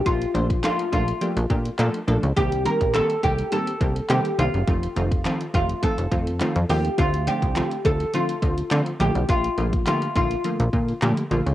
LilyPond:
<<
  \new Staff \with { instrumentName = "Oud" } { \time 4/4 \key bes \major \tempo 4 = 104 f'4 f'8 f'2 r8 | g'8 bes'8 a'8 g'8 a'4 g'8 f'8~ | f'4. f'8 a'4. g'8 | f'8 g'4 a'8 f'4. g'8 |
f'4 f'8 f'2 r8 | }
  \new Staff \with { instrumentName = "Synth stab" } { \time 4/4 \key bes \major <f a bes d' a'>8 <f a bes d' c''>8 <f a bes d' a'>8 <f a bes d' a'>8 <f a bes d' g'>8 <f a bes d' g'>8 <f a bes d' a'>8 <f a bes d' a'>8 | <ees g bes c' g'>8 <ees g bes c' g'>8 <ees g bes c' g'>8 <ees g bes c' g'>8 <ees g bes c' g'>8 <ees g bes c' g'>8 <ees g bes c' g'>8 <ees g bes c' g'>8 | <ees f a c' f'>8 <ees f a c' f'>8 <ees f a c' f'>8 <ees f a c' g'>8 <ees f a c' f'>8 <ees f a c' f'>8 <ees f a c' f'>8 <ees f a c' f'>8 | <d f a c' f'>8 <d f a c' d'>8 <d f a c' f'>8 <d f a c' f'>8 <d f a c' f'>8 <d f a c' f'>8 <d f a c' f'>8 <d f a bes f'>8~ |
<d f a bes f'>8 <d f a bes f'>8 <d f a bes g'>8 <d f a bes f'>8 <d f a bes f'>8 <d f a bes f'>8 <d f a bes g'>8 <d f a bes f'>8 | }
  \new Staff \with { instrumentName = "Analog synth bass" } { \clef bass \time 4/4 \key bes \major bes,,8 bes,,8. r16 bes,,8 r16 bes,,16 bes,8 bes,16 r16 bes,,16 des,16 | c,8. bes,,8 r16 c,8 r8 c,8 c16 r16 c,16 fis,,16 | f,,8 f,,8. r16 f,,8 r16 f,,16 f,8. f,16 ees,8 | d,8. c,8 r16 d,8 r8 d,8 d16 r16 bes,,16 b,,16 |
bes,,8 bes,,8. r16 bes,,8 r16 bes,,16 bes,8 bes,16 r16 bes,,16 des,16 | }
  \new DrumStaff \with { instrumentName = "Drums" } \drummode { \time 4/4 <hh bd>16 hh16 hh16 <hh bd>16 <hc hh>16 hh16 <hh bd>16 hh16 hh16 hh16 <hh bd>16 hh16 <hc hh>16 hh16 hh16 hh16 | <hh bd>16 hh16 hh16 <hh bd>16 <hc hh>16 hh16 <hh bd>16 hh16 hh16 hh16 <hh bd>16 hh16 <hc hh>16 hh16 hh16 hh16 | <hh bd>16 hh16 hh16 <hh bd>16 <hc hh>16 hh16 <hh bd>16 hh16 <hh bd>16 hh16 <hh bd>16 hh16 <hc hh>16 hh16 hho16 hh16 | <hh bd>16 hh16 hh16 <hh bd>16 <hc hh>16 hh16 <hh bd>16 hh16 hh16 hh16 <hh bd>16 hh16 <hc hh>16 hh16 hh16 hh16 |
<hh bd>16 hh16 hh16 <hh bd>16 <hc hh>16 hh16 <hh bd>16 hh16 hh16 hh16 <hh bd>16 hh16 <hc hh>16 hh16 hh16 hh16 | }
>>